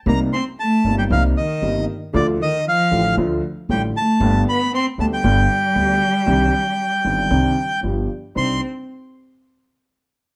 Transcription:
X:1
M:4/4
L:1/16
Q:1/4=116
K:Cdor
V:1 name="Bandoneon"
b2 c'2 a3 g f2 e4 z2 | d2 e2 f4 z4 g2 a2- | a2 =b2 c'2 a g8- g- | g12 z4 |
c'2 z12 z2 |]
V:2 name="Cello" clef=bass
B,2 C2 A,3 G, F,2 E,4 z2 | D,2 E,2 F,4 z4 G,2 A,2- | A,2 =B,2 C2 A, G,8- G,- | G,12 z4 |
C2 z12 z2 |]
V:3 name="Grand piano" clef=bass
[C,,C,G,B,E]2 z4 [G,,,G,,C,G,B,E]2 [C,,C,G,B,E]2 z2 [G,,,G,,C,G,B,E]2 z2 | [D,,D,F,A,F]2 z4 [A,,,A,,D,F,A,F]2 [D,,D,F,A,F]2 z2 [A,,,A,,D,F,A,F]2 z2 | [G,,,G,,D,G,=B,G]2 z4 [D,,D,G,B,G]2 [G,,,G,,D,G,B,G]2 z2 [D,,D,G,B,G]2 z2 | [C,,C,E,CDG]2 z4 [G,,,G,,E,CDG]2 [C,,C,E,CDG]2 z2 [G,,,G,,F,=B,DG]2 z2 |
[C,,DEc]2 z12 z2 |]
V:4 name="Upright bass" clef=bass
C,,2 z4 G,,,2 C,,2 z2 G,,,2 z2 | D,,2 z4 A,,,2 D,,2 z2 A,,,2 z2 | G,,,2 z4 D,,2 G,,,2 z2 D,,2 z2 | C,,2 z4 G,,,2 C,,2 z2 G,,,2 z2 |
C,,2 z12 z2 |]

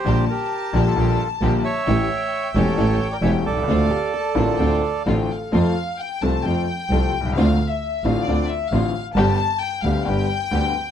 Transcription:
X:1
M:4/4
L:1/16
Q:1/4=132
K:Dm
V:1 name="Violin section"
a16 | g16 | f4 a4 g2 f2 g2 f2 | [K:F] f4 g2 a2 g8 |
f3 e3 f2 d2 e2 f3 z | a4 g2 f2 g8 |]
V:2 name="Bandoneon"
[Gc]2 [GB]4- [GB] [FA]4 z3 [^ce]2- | [^ce]6 [Ac]4- [Ac] [Bd] [ce]2 [Ad]2- | [Ad]12 z4 | [K:F] z16 |
z16 | z16 |]
V:3 name="Hollow-body jazz guitar"
z16 | z16 | z2 G2 A2 B2 A4 A4 | [K:F] z16 |
z16 | z16 |]
V:4 name="String section"
[B,DG]2 z4 [B,DG]2 [B,DG]2 z2 [B,DG]2 z2 | [A,^CG]2 z4 [A,CG]2 [A,CG]2 z2 [A,CG]2 z2 | [CDF]2 z4 [CDF]2 [CDF]2 z2 [CDF]2 z2 | [K:F] [A,CF]2 z4 [A,CF]2 [A,CF]2 z2 [A,CF]2 z2 |
[CDF]2 z4 [CDF]2 [CDF]2 z2 [CDF]2 z2 | [=B,DG]2 z4 [B,DG]2 [B,DG]2 z2 [B,DG]2 z2 |]
V:5 name="Upright piano" clef=bass
[B,,,B,,D,G,B,G]2 z4 [B,,,B,,D,G,B,G]2 [B,,,B,,D,G,B,G]2 z2 [B,,,B,,D,G,B,G]2 z2 | [A,,,A,,E,A,^CG]2 z4 [E,,,E,,E,A,CG]2 [A,,,A,,E,A,CG]2 z2 [E,,,E,,E,A,CG]2 z/2 =B,,,/2 =C,,/2 ^C,,/2 | [D,,D,A,CF]2 z4 [A,,,A,,D,A,CF]2 [D,,D,A,CF]2 z2 [A,,,A,,D,A,CF]2 z2 | [K:F] [F,,F,A,CA]2 z4 [C,,C,F,A,CA]2 [F,,F,A,CA]2 z2 [C,,C,F,A,CA]2 z/2 =B,,,/2 C,,/2 _D,,/2 |
[D,,D,A,CF]2 z4 [A,,,A,,D,A,CF]2 [D,,D,A,CF]2 z2 [A,,,A,,D,A,CF]2 z2 | [G,,,G,,D,G,=B,G]2 z4 [D,,D,G,B,G]2 [G,,,G,,D,G,B,G]2 z2 [D,,D,G,B,G]2 z2 |]
V:6 name="Double bass" clef=bass
B,,,2 z4 B,,,2 B,,,2 z2 B,,,2 z2 | A,,,2 z4 E,,,2 A,,,2 z2 E,,,2 C,,2 | D,,2 z4 A,,,2 D,,2 z2 A,,,2 z2 | [K:F] F,,2 z4 C,,2 F,,2 z2 C,,2 C,,2 |
D,,2 z4 A,,,2 D,,2 z2 A,,,2 z2 | G,,,2 z4 D,,2 G,,,2 z2 D,,2 z2 |]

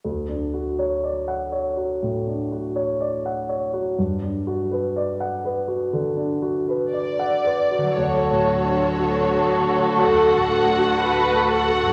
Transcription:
X:1
M:4/4
L:1/16
Q:1/4=61
K:D
V:1 name="Violin section"
z16 | z12 d4 | c8 f6 f2 |]
V:2 name="Viola section"
z16 | z16 | z8 A2 F2 B2 A2 |]
V:3 name="Violin section"
z16 | z16 | [FA]16 |]
V:4 name="Grand piano"
D,, D F c d f c F A,, D F c d f c F | G,, D F B d f B F D, D F B d f B F | (3D,,2 A,,2 D2 (3F2 A2 F2 (3D,,2 A,,2 D2 (3F2 A2 F2 |]
V:5 name="Harp"
z16 | z16 | [D,F,DA]16 |]
V:6 name="Cello section" clef=bass
z16 | z16 | D,,16 |]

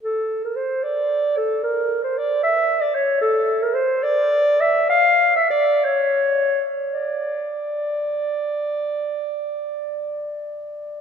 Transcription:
X:1
M:6/8
L:1/16
Q:3/8=66
K:Dm
V:1 name="Clarinet"
A3 B c2 d4 A2 | B3 c d2 e3 d ^c2 | A3 B c2 d4 e2 | f3 e d2 ^c6 |
d12- | d12 |]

